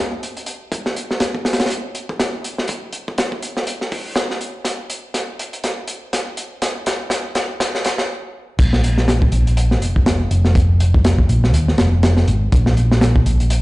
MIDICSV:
0, 0, Header, 1, 3, 480
1, 0, Start_track
1, 0, Tempo, 491803
1, 702, Time_signature, 4, 2, 24, 8
1, 13292, End_track
2, 0, Start_track
2, 0, Title_t, "Fingered electric bass"
2, 0, Program_c, 0, 33
2, 8382, Note_on_c, 0, 34, 104
2, 9057, Note_off_c, 0, 34, 0
2, 9099, Note_on_c, 0, 34, 94
2, 9579, Note_off_c, 0, 34, 0
2, 9579, Note_on_c, 0, 29, 84
2, 10016, Note_off_c, 0, 29, 0
2, 10061, Note_on_c, 0, 29, 77
2, 10976, Note_off_c, 0, 29, 0
2, 11022, Note_on_c, 0, 34, 97
2, 11262, Note_off_c, 0, 34, 0
2, 11262, Note_on_c, 0, 39, 81
2, 11446, Note_off_c, 0, 39, 0
2, 11501, Note_on_c, 0, 29, 88
2, 11937, Note_off_c, 0, 29, 0
2, 11983, Note_on_c, 0, 32, 92
2, 12166, Note_off_c, 0, 32, 0
2, 12223, Note_on_c, 0, 34, 102
2, 12897, Note_off_c, 0, 34, 0
2, 12941, Note_on_c, 0, 34, 96
2, 13292, Note_off_c, 0, 34, 0
2, 13292, End_track
3, 0, Start_track
3, 0, Title_t, "Drums"
3, 224, Note_on_c, 9, 42, 55
3, 322, Note_off_c, 9, 42, 0
3, 358, Note_on_c, 9, 42, 41
3, 452, Note_off_c, 9, 42, 0
3, 452, Note_on_c, 9, 42, 64
3, 550, Note_off_c, 9, 42, 0
3, 699, Note_on_c, 9, 36, 112
3, 702, Note_on_c, 9, 42, 82
3, 797, Note_off_c, 9, 36, 0
3, 800, Note_off_c, 9, 42, 0
3, 838, Note_on_c, 9, 38, 53
3, 936, Note_off_c, 9, 38, 0
3, 941, Note_on_c, 9, 42, 67
3, 1039, Note_off_c, 9, 42, 0
3, 1079, Note_on_c, 9, 38, 49
3, 1173, Note_on_c, 9, 42, 85
3, 1175, Note_off_c, 9, 38, 0
3, 1175, Note_on_c, 9, 38, 102
3, 1270, Note_off_c, 9, 42, 0
3, 1272, Note_off_c, 9, 38, 0
3, 1313, Note_on_c, 9, 36, 90
3, 1411, Note_off_c, 9, 36, 0
3, 1415, Note_on_c, 9, 38, 72
3, 1427, Note_on_c, 9, 42, 64
3, 1494, Note_off_c, 9, 38, 0
3, 1494, Note_off_c, 9, 42, 0
3, 1494, Note_on_c, 9, 38, 76
3, 1494, Note_on_c, 9, 42, 65
3, 1558, Note_off_c, 9, 42, 0
3, 1558, Note_on_c, 9, 42, 68
3, 1559, Note_off_c, 9, 38, 0
3, 1559, Note_on_c, 9, 38, 94
3, 1618, Note_off_c, 9, 38, 0
3, 1618, Note_on_c, 9, 38, 79
3, 1621, Note_off_c, 9, 42, 0
3, 1621, Note_on_c, 9, 42, 72
3, 1662, Note_off_c, 9, 42, 0
3, 1662, Note_on_c, 9, 42, 95
3, 1715, Note_off_c, 9, 38, 0
3, 1760, Note_off_c, 9, 42, 0
3, 1901, Note_on_c, 9, 42, 62
3, 1998, Note_off_c, 9, 42, 0
3, 2043, Note_on_c, 9, 36, 92
3, 2140, Note_off_c, 9, 36, 0
3, 2143, Note_on_c, 9, 38, 107
3, 2146, Note_on_c, 9, 42, 90
3, 2240, Note_off_c, 9, 38, 0
3, 2244, Note_off_c, 9, 42, 0
3, 2385, Note_on_c, 9, 42, 64
3, 2483, Note_off_c, 9, 42, 0
3, 2522, Note_on_c, 9, 38, 53
3, 2613, Note_on_c, 9, 42, 89
3, 2620, Note_off_c, 9, 38, 0
3, 2626, Note_on_c, 9, 36, 92
3, 2710, Note_off_c, 9, 42, 0
3, 2723, Note_off_c, 9, 36, 0
3, 2855, Note_on_c, 9, 42, 59
3, 2953, Note_off_c, 9, 42, 0
3, 3007, Note_on_c, 9, 36, 87
3, 3102, Note_on_c, 9, 42, 83
3, 3104, Note_off_c, 9, 36, 0
3, 3107, Note_on_c, 9, 38, 109
3, 3200, Note_off_c, 9, 42, 0
3, 3205, Note_off_c, 9, 38, 0
3, 3241, Note_on_c, 9, 36, 92
3, 3338, Note_off_c, 9, 36, 0
3, 3343, Note_on_c, 9, 42, 60
3, 3440, Note_off_c, 9, 42, 0
3, 3481, Note_on_c, 9, 38, 51
3, 3578, Note_off_c, 9, 38, 0
3, 3581, Note_on_c, 9, 42, 84
3, 3678, Note_off_c, 9, 42, 0
3, 3722, Note_on_c, 9, 38, 42
3, 3819, Note_off_c, 9, 38, 0
3, 3822, Note_on_c, 9, 46, 73
3, 3826, Note_on_c, 9, 36, 100
3, 3920, Note_off_c, 9, 46, 0
3, 3924, Note_off_c, 9, 36, 0
3, 4056, Note_on_c, 9, 38, 114
3, 4063, Note_on_c, 9, 42, 86
3, 4154, Note_off_c, 9, 38, 0
3, 4161, Note_off_c, 9, 42, 0
3, 4203, Note_on_c, 9, 38, 50
3, 4300, Note_off_c, 9, 38, 0
3, 4302, Note_on_c, 9, 42, 56
3, 4400, Note_off_c, 9, 42, 0
3, 4534, Note_on_c, 9, 38, 51
3, 4539, Note_on_c, 9, 42, 84
3, 4631, Note_off_c, 9, 38, 0
3, 4636, Note_off_c, 9, 42, 0
3, 4780, Note_on_c, 9, 42, 68
3, 4877, Note_off_c, 9, 42, 0
3, 5017, Note_on_c, 9, 38, 51
3, 5019, Note_on_c, 9, 42, 85
3, 5115, Note_off_c, 9, 38, 0
3, 5117, Note_off_c, 9, 42, 0
3, 5265, Note_on_c, 9, 42, 71
3, 5362, Note_off_c, 9, 42, 0
3, 5399, Note_on_c, 9, 42, 45
3, 5497, Note_off_c, 9, 42, 0
3, 5501, Note_on_c, 9, 42, 84
3, 5504, Note_on_c, 9, 38, 58
3, 5599, Note_off_c, 9, 42, 0
3, 5602, Note_off_c, 9, 38, 0
3, 5734, Note_on_c, 9, 42, 69
3, 5832, Note_off_c, 9, 42, 0
3, 5983, Note_on_c, 9, 38, 65
3, 5983, Note_on_c, 9, 42, 91
3, 6081, Note_off_c, 9, 38, 0
3, 6081, Note_off_c, 9, 42, 0
3, 6219, Note_on_c, 9, 42, 65
3, 6317, Note_off_c, 9, 42, 0
3, 6460, Note_on_c, 9, 42, 88
3, 6461, Note_on_c, 9, 38, 75
3, 6557, Note_off_c, 9, 42, 0
3, 6559, Note_off_c, 9, 38, 0
3, 6698, Note_on_c, 9, 42, 64
3, 6703, Note_on_c, 9, 38, 81
3, 6795, Note_off_c, 9, 42, 0
3, 6801, Note_off_c, 9, 38, 0
3, 6929, Note_on_c, 9, 38, 85
3, 6943, Note_on_c, 9, 42, 80
3, 7027, Note_off_c, 9, 38, 0
3, 7040, Note_off_c, 9, 42, 0
3, 7175, Note_on_c, 9, 42, 64
3, 7177, Note_on_c, 9, 38, 86
3, 7272, Note_off_c, 9, 42, 0
3, 7275, Note_off_c, 9, 38, 0
3, 7419, Note_on_c, 9, 38, 102
3, 7423, Note_on_c, 9, 42, 89
3, 7517, Note_off_c, 9, 38, 0
3, 7521, Note_off_c, 9, 42, 0
3, 7562, Note_on_c, 9, 38, 76
3, 7657, Note_on_c, 9, 42, 89
3, 7659, Note_off_c, 9, 38, 0
3, 7668, Note_on_c, 9, 38, 101
3, 7755, Note_off_c, 9, 42, 0
3, 7765, Note_off_c, 9, 38, 0
3, 7792, Note_on_c, 9, 38, 92
3, 7889, Note_off_c, 9, 38, 0
3, 8382, Note_on_c, 9, 36, 118
3, 8382, Note_on_c, 9, 42, 93
3, 8387, Note_on_c, 9, 49, 101
3, 8479, Note_off_c, 9, 42, 0
3, 8480, Note_off_c, 9, 36, 0
3, 8484, Note_off_c, 9, 49, 0
3, 8520, Note_on_c, 9, 38, 49
3, 8617, Note_off_c, 9, 38, 0
3, 8626, Note_on_c, 9, 42, 64
3, 8723, Note_off_c, 9, 42, 0
3, 8761, Note_on_c, 9, 38, 47
3, 8859, Note_off_c, 9, 38, 0
3, 8861, Note_on_c, 9, 38, 105
3, 8864, Note_on_c, 9, 42, 89
3, 8959, Note_off_c, 9, 38, 0
3, 8961, Note_off_c, 9, 42, 0
3, 8997, Note_on_c, 9, 36, 112
3, 9095, Note_off_c, 9, 36, 0
3, 9096, Note_on_c, 9, 42, 66
3, 9193, Note_off_c, 9, 42, 0
3, 9243, Note_on_c, 9, 42, 48
3, 9341, Note_off_c, 9, 42, 0
3, 9341, Note_on_c, 9, 42, 88
3, 9438, Note_off_c, 9, 42, 0
3, 9479, Note_on_c, 9, 38, 39
3, 9577, Note_off_c, 9, 38, 0
3, 9584, Note_on_c, 9, 42, 63
3, 9681, Note_off_c, 9, 42, 0
3, 9722, Note_on_c, 9, 36, 85
3, 9820, Note_off_c, 9, 36, 0
3, 9821, Note_on_c, 9, 38, 117
3, 9821, Note_on_c, 9, 42, 88
3, 9919, Note_off_c, 9, 38, 0
3, 9919, Note_off_c, 9, 42, 0
3, 10062, Note_on_c, 9, 42, 61
3, 10160, Note_off_c, 9, 42, 0
3, 10196, Note_on_c, 9, 38, 47
3, 10293, Note_off_c, 9, 38, 0
3, 10299, Note_on_c, 9, 36, 119
3, 10301, Note_on_c, 9, 42, 92
3, 10397, Note_off_c, 9, 36, 0
3, 10398, Note_off_c, 9, 42, 0
3, 10543, Note_on_c, 9, 42, 71
3, 10641, Note_off_c, 9, 42, 0
3, 10682, Note_on_c, 9, 36, 105
3, 10779, Note_off_c, 9, 36, 0
3, 10780, Note_on_c, 9, 42, 87
3, 10784, Note_on_c, 9, 38, 104
3, 10877, Note_off_c, 9, 42, 0
3, 10881, Note_off_c, 9, 38, 0
3, 10917, Note_on_c, 9, 36, 92
3, 11015, Note_off_c, 9, 36, 0
3, 11021, Note_on_c, 9, 42, 62
3, 11118, Note_off_c, 9, 42, 0
3, 11164, Note_on_c, 9, 38, 49
3, 11260, Note_on_c, 9, 42, 89
3, 11261, Note_off_c, 9, 38, 0
3, 11358, Note_off_c, 9, 42, 0
3, 11403, Note_on_c, 9, 38, 40
3, 11497, Note_on_c, 9, 42, 78
3, 11499, Note_off_c, 9, 38, 0
3, 11499, Note_on_c, 9, 38, 112
3, 11594, Note_off_c, 9, 42, 0
3, 11597, Note_off_c, 9, 38, 0
3, 11741, Note_on_c, 9, 42, 93
3, 11743, Note_on_c, 9, 38, 113
3, 11839, Note_off_c, 9, 42, 0
3, 11841, Note_off_c, 9, 38, 0
3, 11875, Note_on_c, 9, 38, 54
3, 11973, Note_off_c, 9, 38, 0
3, 11982, Note_on_c, 9, 42, 59
3, 12079, Note_off_c, 9, 42, 0
3, 12223, Note_on_c, 9, 36, 120
3, 12223, Note_on_c, 9, 42, 91
3, 12320, Note_off_c, 9, 42, 0
3, 12321, Note_off_c, 9, 36, 0
3, 12358, Note_on_c, 9, 38, 59
3, 12455, Note_off_c, 9, 38, 0
3, 12463, Note_on_c, 9, 42, 68
3, 12560, Note_off_c, 9, 42, 0
3, 12605, Note_on_c, 9, 38, 58
3, 12701, Note_off_c, 9, 38, 0
3, 12701, Note_on_c, 9, 38, 116
3, 12705, Note_on_c, 9, 42, 93
3, 12799, Note_off_c, 9, 38, 0
3, 12803, Note_off_c, 9, 42, 0
3, 12841, Note_on_c, 9, 36, 105
3, 12938, Note_off_c, 9, 36, 0
3, 12942, Note_on_c, 9, 42, 68
3, 13040, Note_off_c, 9, 42, 0
3, 13080, Note_on_c, 9, 42, 46
3, 13177, Note_off_c, 9, 42, 0
3, 13179, Note_on_c, 9, 42, 95
3, 13276, Note_off_c, 9, 42, 0
3, 13292, End_track
0, 0, End_of_file